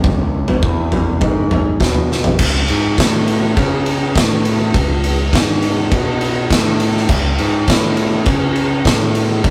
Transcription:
0.04 C#2, kick, floor tom
0.48 floor tom
0.63 E2, kick
0.92 floor tom
1.21 G#2, kick, floor tom
1.51 floor tom, mid tom
1.80 B2, kick, snare, mid tom
1.95 mid tom
2.12 snare
2.24 floor tom
2.39 C#2, kick, crash
2.68 G#2, ride
2.98 A2, kick, snare, ride
3.28 ride
3.57 C#3, kick, ride
3.86 ride
4.15 A2, kick, snare, ride
4.45 ride
4.74 C#2, kick, ride
5.04 ride
5.33 G#2, kick, snare, ride
5.62 ride
5.91 B2, kick, ride
6.21 ride
6.50 A2, kick, snare, ride
6.80 ride
6.97 snare
7.09 C#2, kick, crash
7.38 G#2, ride
7.68 A2, kick, snare, ride
7.97 ride
8.26 C#3, kick, ride
8.56 ride
8.85 A2, kick, snare, ride
9.15 ride
9.44 C#2, kick, ride

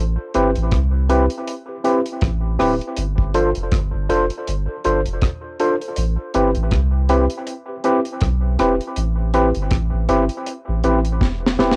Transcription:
Already playing: A1
0.34 G1 C4 E4 G4 B4, closed hi-hat
0.55 A1, closed hi-hat
0.71 C2, kick, cross-stick, closed hi-hat
1.09 C4 E4 G4 B4, closed hi-hat
1.30 closed hi-hat
1.47 closed hi-hat
1.68 G4 B4
1.84 C4 E4 G4 B4, closed hi-hat
2.06 closed hi-hat
2.21 A1, kick, cross-stick, closed hi-hat
2.59 D1 C4 E4 G4 B4, cross-stick, open hi-hat
2.81 closed hi-hat
2.97 G1, closed hi-hat
3.18 kick
3.34 D4 F4 A4 C5, closed hi-hat
3.55 F1, closed hi-hat
3.72 G1, kick, cross-stick, closed hi-hat
3.94 G1
4.10 F1 D4 F4 A4 C5, closed hi-hat
4.30 closed hi-hat
4.47 G1, closed hi-hat
4.69 A4 C5
4.84 G1 D4 F4 A4 C5, closed hi-hat
5.06 F1, closed hi-hat
5.21 kick, cross-stick, closed hi-hat
5.60 D4 F4 A4 C5, closed hi-hat
5.81 A4 C5, closed hi-hat
5.96 A1, closed hi-hat
6.34 G1 C4 E4 G4 B4, closed hi-hat
6.55 A1, closed hi-hat
6.71 C2, kick, cross-stick, closed hi-hat
7.09 C4 E4 G4 B4, closed hi-hat
7.30 closed hi-hat
7.47 closed hi-hat
7.68 G4 B4
7.84 C4 E4 G4 B4, closed hi-hat
8.05 closed hi-hat
8.21 B1, kick, cross-stick, closed hi-hat
8.59 E1 C4 E4 G4 B4, cross-stick, closed hi-hat
8.81 closed hi-hat
8.96 A1, closed hi-hat
9.34 C4 E4 G4 B4, closed hi-hat
9.55 G1, closed hi-hat
9.71 A1, kick, cross-stick, closed hi-hat
9.93 A1
10.09 G1 C4 E4 G4 B4, closed hi-hat
10.29 closed hi-hat
10.46 closed hi-hat
10.68 A1 G4 B4
10.84 A1 C4 E4 G4 B4, closed hi-hat
11.05 closed hi-hat
11.21 E1, kick, snare
11.46 snare
11.59 E1 C4 E4 G4 B4, snare
11.71 snare

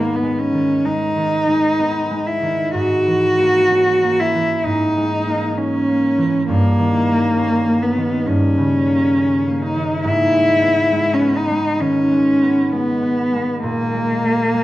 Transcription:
Already playing: G#2 D#3 G#3 A#3 B3
0.16 B3
0.23 G#3
0.39 C#4
0.54 D#3
0.85 G#3 D#4
1.17 D#3
1.48 G#3
1.79 B3
2.11 G#3
2.27 E4
2.43 D#3
2.74 G#2 F#4
3.07 E3
3.39 A#3
3.71 C#4
4.03 A#3
4.20 E4
4.35 E3
4.66 G#2 D#4
4.97 G#3
5.27 A#3
5.57 C#4
5.88 A#3
6.18 E3
6.49 G2 A#3
6.79 D#3
7.08 A#3
7.37 C#4
7.67 A#3
7.82 B3
7.97 D#3
8.26 G2 C#4
8.58 C#3
8.87 A#3
9.18 C#4
9.47 A#3
9.62 D#4
9.76 D#3
10.04 G#2 E4
10.33 G#3
10.62 B3
10.92 G#3
11.13 C#4
11.21 B3
11.36 D#4
11.51 G#3
11.81 D#3 C#4
12.12 G#3
12.42 B3
12.72 G#3 B3
13.03 B3
13.33 G#3
13.63 A#2 A#3
13.94 G#3
14.24 A#3
14.54 G#3

